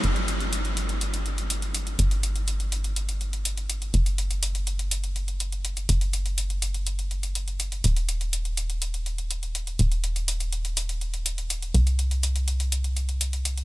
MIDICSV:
0, 0, Header, 1, 3, 480
1, 0, Start_track
1, 0, Tempo, 487805
1, 36, Time_signature, 4, 2, 24, 8
1, 13422, End_track
2, 0, Start_track
2, 0, Title_t, "Analog synth bass"
2, 0, Program_c, 0, 38
2, 37, Note_on_c, 0, 31, 84
2, 1933, Note_off_c, 0, 31, 0
2, 1957, Note_on_c, 0, 31, 82
2, 3853, Note_off_c, 0, 31, 0
2, 3876, Note_on_c, 0, 30, 85
2, 5773, Note_off_c, 0, 30, 0
2, 5796, Note_on_c, 0, 30, 80
2, 7693, Note_off_c, 0, 30, 0
2, 7717, Note_on_c, 0, 27, 82
2, 9613, Note_off_c, 0, 27, 0
2, 9637, Note_on_c, 0, 27, 78
2, 11533, Note_off_c, 0, 27, 0
2, 11557, Note_on_c, 0, 36, 80
2, 13422, Note_off_c, 0, 36, 0
2, 13422, End_track
3, 0, Start_track
3, 0, Title_t, "Drums"
3, 36, Note_on_c, 9, 42, 85
3, 134, Note_off_c, 9, 42, 0
3, 157, Note_on_c, 9, 42, 38
3, 255, Note_off_c, 9, 42, 0
3, 277, Note_on_c, 9, 42, 61
3, 375, Note_off_c, 9, 42, 0
3, 398, Note_on_c, 9, 42, 36
3, 496, Note_off_c, 9, 42, 0
3, 518, Note_on_c, 9, 42, 82
3, 616, Note_off_c, 9, 42, 0
3, 638, Note_on_c, 9, 42, 36
3, 737, Note_off_c, 9, 42, 0
3, 757, Note_on_c, 9, 42, 61
3, 855, Note_off_c, 9, 42, 0
3, 877, Note_on_c, 9, 42, 37
3, 976, Note_off_c, 9, 42, 0
3, 997, Note_on_c, 9, 42, 82
3, 1095, Note_off_c, 9, 42, 0
3, 1118, Note_on_c, 9, 42, 37
3, 1216, Note_off_c, 9, 42, 0
3, 1237, Note_on_c, 9, 42, 34
3, 1335, Note_off_c, 9, 42, 0
3, 1358, Note_on_c, 9, 42, 37
3, 1457, Note_off_c, 9, 42, 0
3, 1477, Note_on_c, 9, 42, 83
3, 1575, Note_off_c, 9, 42, 0
3, 1598, Note_on_c, 9, 42, 36
3, 1696, Note_off_c, 9, 42, 0
3, 1717, Note_on_c, 9, 42, 59
3, 1815, Note_off_c, 9, 42, 0
3, 1838, Note_on_c, 9, 42, 35
3, 1937, Note_off_c, 9, 42, 0
3, 1957, Note_on_c, 9, 42, 79
3, 2056, Note_off_c, 9, 42, 0
3, 2079, Note_on_c, 9, 42, 35
3, 2177, Note_off_c, 9, 42, 0
3, 2197, Note_on_c, 9, 42, 61
3, 2296, Note_off_c, 9, 42, 0
3, 2318, Note_on_c, 9, 42, 35
3, 2417, Note_off_c, 9, 42, 0
3, 2437, Note_on_c, 9, 42, 82
3, 2536, Note_off_c, 9, 42, 0
3, 2558, Note_on_c, 9, 42, 34
3, 2657, Note_off_c, 9, 42, 0
3, 2678, Note_on_c, 9, 42, 57
3, 2776, Note_off_c, 9, 42, 0
3, 2798, Note_on_c, 9, 42, 38
3, 2897, Note_off_c, 9, 42, 0
3, 2917, Note_on_c, 9, 42, 79
3, 3015, Note_off_c, 9, 42, 0
3, 3037, Note_on_c, 9, 42, 35
3, 3136, Note_off_c, 9, 42, 0
3, 3157, Note_on_c, 9, 42, 33
3, 3256, Note_off_c, 9, 42, 0
3, 3278, Note_on_c, 9, 42, 33
3, 3376, Note_off_c, 9, 42, 0
3, 3397, Note_on_c, 9, 42, 84
3, 3495, Note_off_c, 9, 42, 0
3, 3518, Note_on_c, 9, 42, 34
3, 3616, Note_off_c, 9, 42, 0
3, 3636, Note_on_c, 9, 42, 58
3, 3735, Note_off_c, 9, 42, 0
3, 3757, Note_on_c, 9, 42, 34
3, 3856, Note_off_c, 9, 42, 0
3, 3876, Note_on_c, 9, 42, 75
3, 3974, Note_off_c, 9, 42, 0
3, 3997, Note_on_c, 9, 42, 33
3, 4095, Note_off_c, 9, 42, 0
3, 4116, Note_on_c, 9, 42, 56
3, 4215, Note_off_c, 9, 42, 0
3, 4237, Note_on_c, 9, 42, 34
3, 4335, Note_off_c, 9, 42, 0
3, 4356, Note_on_c, 9, 42, 79
3, 4454, Note_off_c, 9, 42, 0
3, 4476, Note_on_c, 9, 42, 34
3, 4575, Note_off_c, 9, 42, 0
3, 4595, Note_on_c, 9, 42, 58
3, 4694, Note_off_c, 9, 42, 0
3, 4716, Note_on_c, 9, 42, 37
3, 4814, Note_off_c, 9, 42, 0
3, 4835, Note_on_c, 9, 42, 83
3, 4933, Note_off_c, 9, 42, 0
3, 4956, Note_on_c, 9, 42, 35
3, 5054, Note_off_c, 9, 42, 0
3, 5076, Note_on_c, 9, 42, 31
3, 5174, Note_off_c, 9, 42, 0
3, 5196, Note_on_c, 9, 42, 33
3, 5294, Note_off_c, 9, 42, 0
3, 5316, Note_on_c, 9, 42, 79
3, 5414, Note_off_c, 9, 42, 0
3, 5436, Note_on_c, 9, 42, 34
3, 5535, Note_off_c, 9, 42, 0
3, 5556, Note_on_c, 9, 42, 59
3, 5654, Note_off_c, 9, 42, 0
3, 5676, Note_on_c, 9, 42, 35
3, 5775, Note_off_c, 9, 42, 0
3, 5796, Note_on_c, 9, 42, 79
3, 5894, Note_off_c, 9, 42, 0
3, 5916, Note_on_c, 9, 42, 33
3, 6015, Note_off_c, 9, 42, 0
3, 6036, Note_on_c, 9, 42, 52
3, 6134, Note_off_c, 9, 42, 0
3, 6156, Note_on_c, 9, 42, 33
3, 6255, Note_off_c, 9, 42, 0
3, 6276, Note_on_c, 9, 42, 76
3, 6374, Note_off_c, 9, 42, 0
3, 6397, Note_on_c, 9, 42, 33
3, 6495, Note_off_c, 9, 42, 0
3, 6516, Note_on_c, 9, 42, 59
3, 6614, Note_off_c, 9, 42, 0
3, 6637, Note_on_c, 9, 42, 36
3, 6735, Note_off_c, 9, 42, 0
3, 6756, Note_on_c, 9, 42, 77
3, 6854, Note_off_c, 9, 42, 0
3, 6876, Note_on_c, 9, 42, 34
3, 6975, Note_off_c, 9, 42, 0
3, 6996, Note_on_c, 9, 42, 30
3, 7094, Note_off_c, 9, 42, 0
3, 7116, Note_on_c, 9, 42, 34
3, 7215, Note_off_c, 9, 42, 0
3, 7236, Note_on_c, 9, 42, 75
3, 7334, Note_off_c, 9, 42, 0
3, 7357, Note_on_c, 9, 42, 33
3, 7455, Note_off_c, 9, 42, 0
3, 7476, Note_on_c, 9, 42, 55
3, 7574, Note_off_c, 9, 42, 0
3, 7597, Note_on_c, 9, 42, 33
3, 7695, Note_off_c, 9, 42, 0
3, 7717, Note_on_c, 9, 42, 74
3, 7815, Note_off_c, 9, 42, 0
3, 7837, Note_on_c, 9, 42, 36
3, 7936, Note_off_c, 9, 42, 0
3, 7957, Note_on_c, 9, 42, 56
3, 8055, Note_off_c, 9, 42, 0
3, 8078, Note_on_c, 9, 42, 34
3, 8176, Note_off_c, 9, 42, 0
3, 8197, Note_on_c, 9, 42, 79
3, 8295, Note_off_c, 9, 42, 0
3, 8317, Note_on_c, 9, 42, 32
3, 8415, Note_off_c, 9, 42, 0
3, 8437, Note_on_c, 9, 42, 58
3, 8535, Note_off_c, 9, 42, 0
3, 8557, Note_on_c, 9, 42, 37
3, 8656, Note_off_c, 9, 42, 0
3, 8676, Note_on_c, 9, 42, 77
3, 8775, Note_off_c, 9, 42, 0
3, 8797, Note_on_c, 9, 42, 34
3, 8896, Note_off_c, 9, 42, 0
3, 8916, Note_on_c, 9, 42, 31
3, 9015, Note_off_c, 9, 42, 0
3, 9037, Note_on_c, 9, 42, 33
3, 9136, Note_off_c, 9, 42, 0
3, 9157, Note_on_c, 9, 42, 79
3, 9255, Note_off_c, 9, 42, 0
3, 9278, Note_on_c, 9, 42, 33
3, 9376, Note_off_c, 9, 42, 0
3, 9397, Note_on_c, 9, 42, 55
3, 9495, Note_off_c, 9, 42, 0
3, 9517, Note_on_c, 9, 42, 34
3, 9616, Note_off_c, 9, 42, 0
3, 9636, Note_on_c, 9, 42, 80
3, 9734, Note_off_c, 9, 42, 0
3, 9757, Note_on_c, 9, 42, 35
3, 9856, Note_off_c, 9, 42, 0
3, 9876, Note_on_c, 9, 42, 57
3, 9975, Note_off_c, 9, 42, 0
3, 9997, Note_on_c, 9, 42, 34
3, 10096, Note_off_c, 9, 42, 0
3, 10116, Note_on_c, 9, 42, 79
3, 10215, Note_off_c, 9, 42, 0
3, 10238, Note_on_c, 9, 42, 34
3, 10336, Note_off_c, 9, 42, 0
3, 10357, Note_on_c, 9, 42, 57
3, 10455, Note_off_c, 9, 42, 0
3, 10477, Note_on_c, 9, 42, 37
3, 10576, Note_off_c, 9, 42, 0
3, 10597, Note_on_c, 9, 42, 81
3, 10696, Note_off_c, 9, 42, 0
3, 10718, Note_on_c, 9, 42, 36
3, 10816, Note_off_c, 9, 42, 0
3, 10837, Note_on_c, 9, 42, 33
3, 10936, Note_off_c, 9, 42, 0
3, 10958, Note_on_c, 9, 42, 33
3, 11056, Note_off_c, 9, 42, 0
3, 11077, Note_on_c, 9, 42, 83
3, 11176, Note_off_c, 9, 42, 0
3, 11198, Note_on_c, 9, 42, 35
3, 11297, Note_off_c, 9, 42, 0
3, 11318, Note_on_c, 9, 42, 61
3, 11416, Note_off_c, 9, 42, 0
3, 11439, Note_on_c, 9, 42, 35
3, 11537, Note_off_c, 9, 42, 0
3, 11557, Note_on_c, 9, 42, 79
3, 11656, Note_off_c, 9, 42, 0
3, 11678, Note_on_c, 9, 42, 36
3, 11777, Note_off_c, 9, 42, 0
3, 11797, Note_on_c, 9, 42, 59
3, 11896, Note_off_c, 9, 42, 0
3, 11918, Note_on_c, 9, 42, 35
3, 12017, Note_off_c, 9, 42, 0
3, 12038, Note_on_c, 9, 42, 81
3, 12136, Note_off_c, 9, 42, 0
3, 12158, Note_on_c, 9, 42, 37
3, 12257, Note_off_c, 9, 42, 0
3, 12277, Note_on_c, 9, 42, 63
3, 12376, Note_off_c, 9, 42, 0
3, 12398, Note_on_c, 9, 42, 40
3, 12497, Note_off_c, 9, 42, 0
3, 12518, Note_on_c, 9, 42, 81
3, 12616, Note_off_c, 9, 42, 0
3, 12638, Note_on_c, 9, 42, 36
3, 12736, Note_off_c, 9, 42, 0
3, 12758, Note_on_c, 9, 42, 34
3, 12856, Note_off_c, 9, 42, 0
3, 12878, Note_on_c, 9, 42, 36
3, 12976, Note_off_c, 9, 42, 0
3, 12997, Note_on_c, 9, 42, 84
3, 13096, Note_off_c, 9, 42, 0
3, 13118, Note_on_c, 9, 42, 36
3, 13216, Note_off_c, 9, 42, 0
3, 13237, Note_on_c, 9, 42, 61
3, 13336, Note_off_c, 9, 42, 0
3, 13358, Note_on_c, 9, 42, 36
3, 13422, Note_off_c, 9, 42, 0
3, 13422, End_track
0, 0, End_of_file